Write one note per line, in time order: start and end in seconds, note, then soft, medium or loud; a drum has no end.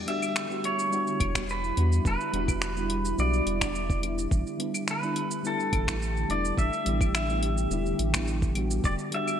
0.00 9.40 D3 medium
0.00 4.27 G3 medium
0.00 4.28 E4 medium
0.06 0.46 G3 medium
0.06 0.46 B3 medium
0.06 0.47 D4 medium
0.06 0.48 F#4 medium
0.06 0.66 E5 loud
0.06 closed hi-hat medium
0.22 claves medium
0.22 shaker medium
0.36 finger snap medium
0.36 shaker medium
0.48 0.88 G3 medium
0.48 0.89 B3 medium
0.48 0.89 D4 medium
0.48 0.90 F#4 medium
0.48 shaker soft
0.64 1.52 C#5 loud
0.64 closed hi-hat medium
0.79 shaker medium
0.90 1.31 G3 medium
0.90 1.31 B3 medium
0.90 1.32 D4 medium
0.90 1.32 F#4 medium
0.90 shaker medium
1.07 shaker soft
1.20 1.72 E1 medium
1.20 kick loud
1.20 closed hi-hat medium
1.20 claves medium
1.34 1.42 G3 medium
1.34 1.42 B3 medium
1.34 1.43 D4 medium
1.34 1.44 F#4 medium
1.34 finger snap medium
1.34 kick medium
1.34 shaker medium
1.49 2.06 B4 medium
1.49 shaker medium
1.64 shaker soft
1.75 2.00 E2 medium
1.75 2.30 G3 medium
1.75 2.30 B3 medium
1.75 2.31 D4 medium
1.75 2.31 F#4 medium
1.75 closed hi-hat medium
1.92 shaker medium
2.05 2.17 E1 loud
2.05 3.16 B4 medium
2.05 kick loud
2.05 shaker medium
2.21 shaker soft
2.32 3.14 E1 medium
2.32 2.72 G3 medium
2.32 2.73 B3 medium
2.32 2.74 D4 medium
2.32 2.74 F#4 medium
2.32 closed hi-hat medium
2.48 kick loud
2.48 claves medium
2.48 shaker medium
2.62 finger snap medium
2.62 shaker medium
2.75 3.14 G3 medium
2.75 3.15 B3 medium
2.75 3.16 D4 medium
2.75 3.16 F#4 medium
2.75 shaker soft
2.90 closed hi-hat medium
3.05 shaker medium
3.16 3.41 B1 medium
3.16 3.57 G3 medium
3.16 3.58 B3 medium
3.16 3.58 D4 medium
3.16 3.59 F#4 medium
3.16 4.00 D5 medium
3.16 shaker medium
3.34 shaker soft
3.46 4.27 E1 medium
3.46 closed hi-hat medium
3.59 3.68 G3 medium
3.59 3.69 B3 medium
3.59 3.69 D4 medium
3.59 3.70 F#4 medium
3.59 finger snap medium
3.59 kick medium
3.59 claves medium
3.59 shaker medium
3.75 shaker medium
3.90 kick loud
3.90 shaker soft
4.01 4.56 G3 medium
4.01 4.56 B3 medium
4.01 4.57 D4 medium
4.01 4.57 E4 medium
4.01 closed hi-hat medium
4.01 claves medium
4.18 shaker medium
4.31 4.43 A1 loud
4.31 8.80 A3 medium
4.31 8.80 G4 medium
4.31 kick loud
4.31 shaker medium
4.47 shaker soft
4.58 4.98 G3 medium
4.58 4.99 B3 medium
4.58 5.00 D4 medium
4.58 5.00 E4 medium
4.58 closed hi-hat medium
4.74 claves medium
4.74 shaker medium
4.88 5.48 B4 medium
4.88 finger snap medium
4.88 shaker medium
5.01 5.40 G3 medium
5.01 5.41 B3 medium
5.01 5.42 D4 medium
5.01 5.42 E4 medium
5.01 shaker soft
5.16 closed hi-hat medium
5.31 shaker medium
5.43 5.84 G3 medium
5.43 5.84 B3 medium
5.43 5.85 D4 medium
5.43 5.85 E4 medium
5.43 6.33 A4 loud
5.43 shaker medium
5.60 shaker soft
5.73 6.25 A1 medium
5.73 kick loud
5.73 closed hi-hat medium
5.73 claves medium
5.86 5.95 G3 medium
5.86 5.95 B3 medium
5.86 5.96 D4 medium
5.86 5.96 E4 medium
5.86 finger snap medium
5.86 kick medium
5.86 shaker medium
6.02 shaker medium
6.17 shaker soft
6.28 6.52 E1 medium
6.28 6.82 G3 medium
6.28 6.83 B3 medium
6.28 6.83 D4 medium
6.28 6.84 E4 medium
6.28 6.59 D5 loud
6.28 closed hi-hat medium
6.45 shaker medium
6.58 6.70 A1 loud
6.58 7.13 E5 loud
6.58 kick loud
6.58 shaker medium
6.73 shaker soft
6.85 7.67 A1 medium
6.85 7.25 G3 medium
6.85 7.26 B3 medium
6.85 7.26 D4 medium
6.85 7.27 E4 medium
6.85 closed hi-hat medium
7.01 kick loud
7.01 claves medium
7.01 shaker medium
7.15 7.96 E5 medium
7.15 finger snap medium
7.15 shaker medium
7.28 7.67 G3 medium
7.28 7.68 B3 medium
7.28 7.68 D4 medium
7.28 7.69 E4 medium
7.28 shaker soft
7.43 closed hi-hat medium
7.58 shaker medium
7.70 7.94 E1 loud
7.70 8.10 G3 medium
7.70 8.11 B3 medium
7.70 8.11 D4 medium
7.70 8.12 E4 medium
7.70 shaker medium
7.86 shaker soft
7.99 8.80 A1 medium
7.99 closed hi-hat medium
8.13 8.52 G3 medium
8.13 8.53 B3 medium
8.13 8.53 D4 medium
8.13 8.54 E4 medium
8.13 finger snap medium
8.13 kick medium
8.13 claves medium
8.13 shaker medium
8.27 shaker medium
8.42 kick loud
8.42 shaker soft
8.54 9.09 G3 medium
8.54 9.09 B3 medium
8.54 9.10 D4 medium
8.54 9.10 F#4 medium
8.54 closed hi-hat medium
8.54 claves medium
8.71 shaker medium
8.84 8.96 E1 loud
8.84 9.40 G3 medium
8.84 9.40 E4 medium
8.84 8.93 D5 loud
8.84 kick loud
8.84 shaker medium
8.99 shaker soft
9.11 9.40 G3 medium
9.11 9.40 B3 medium
9.11 9.40 D4 medium
9.11 9.40 F#4 medium
9.11 9.40 E5 loud
9.11 closed hi-hat medium
9.28 claves medium
9.28 shaker medium